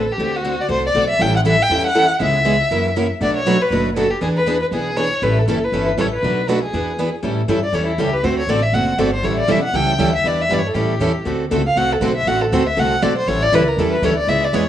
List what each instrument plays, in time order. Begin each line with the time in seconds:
Already playing: violin A4
0.12 violin G4
0.18 upright bass D2, steel-string acoustic guitar D3 A3 C4 F#4 A4
0.36 violin F#4
0.45 steel-string acoustic guitar D3 A3 C4 F#4 A4
0.60 violin D5
0.69 upright bass C2, steel-string acoustic guitar D3 A3 C4 F#4 A4, violin C5
0.86 violin D5
0.95 upright bass B1, steel-string acoustic guitar D3 A3 C4 F#4 A4
1.10 violin E5
1.19 upright bass A1, steel-string acoustic guitar E3 G3 C#4 E4 A4, violin G5
1.36 violin F#5
1.45 steel-string acoustic guitar E3 G3 C#4 E4 A4, violin E5
1.62 violin G5
1.70 upright bass E2, steel-string acoustic guitar E3 G3 C#4 E4 A4
1.87 violin F#5
1.95 steel-string acoustic guitar E3 G3 C#4 E4 A4
2.20 upright bass C#2, steel-string acoustic guitar C#3 E3 G#3 B3 C#4 E4 G#4, violin E5
2.45 steel-string acoustic guitar C#3 E3 G#3 B3 C#4 E4 G#4
2.71 upright bass F#2, steel-string acoustic guitar C#3 E3 F#3 A#3 C#4 E4 F#4 A#4
2.96 steel-string acoustic guitar C#3 E3 F#3 A#3 C#4 E4 F#4 A#4
3.21 upright bass B1, steel-string acoustic guitar B2 F#3 A3 D4 F#4 B4, violin D5
3.37 violin C#5
3.46 steel-string acoustic guitar B2 F#3 A3 D4 F#4 B4
3.62 violin B4
3.70 upright bass F#1, steel-string acoustic guitar B2 F#3 A3 D4 F#4 B4
3.96 steel-string acoustic guitar B2 F#3 A3 D4 F#4 B4, violin A4
4.10 violin G4
4.21 upright bass E2, steel-string acoustic guitar E3 B3 D4 G#4 B4, violin G#4
4.36 violin B4
4.46 steel-string acoustic guitar E3 B3 D4 G#4 B4
4.61 violin B4
4.71 upright bass B1, steel-string acoustic guitar E3 B3 D4 G#4 B4, violin G#4
4.97 steel-string acoustic guitar E3 B3 D4 G#4 B4, violin C#5
5.22 upright bass A1, steel-string acoustic guitar E3 G3 C#4 E4 A4, violin B4
5.38 violin A4
5.47 upright bass F#1, steel-string acoustic guitar E3 G3 C#4 E4 A4, violin A4
5.64 violin B4
5.72 upright bass G1, steel-string acoustic guitar E3 G3 C#4 E4 A4
5.97 upright bass A1, steel-string acoustic guitar E3 G3 C#4 E4 A4, violin C#5
6.13 violin B4
6.23 upright bass B1, steel-string acoustic guitar B2 F#3 A3 D4 F#4 B4
6.49 steel-string acoustic guitar B2 F#3 A3 D4 F#4 B4, violin A4
6.63 violin G#4
6.73 upright bass E2, steel-string acoustic guitar E3 B3 D4 G#4 B4
6.98 steel-string acoustic guitar E3 B3 D4 G#4 B4
7.23 upright bass A2, steel-string acoustic guitar E3 G3 C#4 E4 A4
7.48 upright bass G2, steel-string acoustic guitar E3 G3 C#4 E4 A4
7.63 violin D5
7.73 upright bass E2, steel-string acoustic guitar E3 G3 C#4 E4 A4, violin C#5
7.86 violin E4
7.98 upright bass C#2, steel-string acoustic guitar E3 G3 C#4 E4 A4, violin G4
8.13 violin B4
8.23 upright bass D2, steel-string acoustic guitar D3 A3 C4 F#4 A4, violin C5
8.39 violin C#5
8.47 upright bass A1, steel-string acoustic guitar D3 A3 C4 F#4 A4, violin D5
8.62 violin E5
8.73 upright bass F#1, steel-string acoustic guitar D3 A3 C4 F#4 A4, violin F#5
8.98 upright bass G1, steel-string acoustic guitar D3 A3 C4 F#4 A4, violin D5
9.13 violin C5
9.23 upright bass A1, steel-string acoustic guitar E3 G3 C#4 E4 A4, violin C#5
9.39 violin D5
9.48 upright bass B1, steel-string acoustic guitar E3 G3 C#4 E4 A4, violin E5
9.63 violin F#5
9.73 upright bass C#2, steel-string acoustic guitar E3 G3 C#4 E4 A4, violin G5
9.99 upright bass D2, steel-string acoustic guitar E3 G3 C#4 E4 A4
10.16 violin E5
10.24 upright bass E2, steel-string acoustic guitar E3 G3 B3 D4 E4 G4 B4, violin D5
10.41 violin E5
10.50 upright bass G2, steel-string acoustic guitar E3 G3 B3 D4 E4 G4 B4, violin D5
10.59 violin C#5
10.66 violin A4
10.74 upright bass A2, steel-string acoustic guitar E3 G3 C#4 E4 A4, violin G4
10.99 upright bass E2, steel-string acoustic guitar E3 G3 C#4 E4 A4
11.25 upright bass D2, steel-string acoustic guitar D3 A3 C4 F#4 A4
11.51 upright bass C#2, steel-string acoustic guitar D3 A3 C4 F#4 A4
11.66 violin F5
11.76 upright bass C2, steel-string acoustic guitar D3 A3 C4 F#4 A4, violin F#5
11.92 violin A4
12.01 upright bass B1, steel-string acoustic guitar D3 A3 C4 F#4 A4, violin C5
12.16 violin E5
12.26 upright bass A1, steel-string acoustic guitar D3 A3 C4 F#4 A4, violin F#5
12.41 violin A4
12.52 upright bass D2, steel-string acoustic guitar D3 A3 C4 F#4 A4, violin C5
12.66 violin E5
12.77 upright bass C2, steel-string acoustic guitar D3 A3 C4 F#4 A4, violin F#5
13.02 upright bass B1, steel-string acoustic guitar D3 A3 C4 F#4 A4, violin D5
13.18 violin C5
13.27 upright bass A1, steel-string acoustic guitar E3 G3 C#4 E4 A4, violin C#5
13.42 violin D5
13.52 upright bass C#2, steel-string acoustic guitar E3 G3 C#4 E4 A4, violin B4
13.68 violin A#4
13.77 upright bass E2, steel-string acoustic guitar E3 G3 C#4 E4 A4, violin A4
13.91 violin B4
14.02 upright bass D2, steel-string acoustic guitar E3 G3 C#4 E4 A4, violin C#5
14.17 violin D5
14.27 upright bass C#2, steel-string acoustic guitar C#3 E3 G#3 B3 C#4 E4 G#4, violin E5
14.44 violin D5
14.53 upright bass E2, steel-string acoustic guitar C#3 E3 G#3 B3 C#4 E4 G#4, violin C#5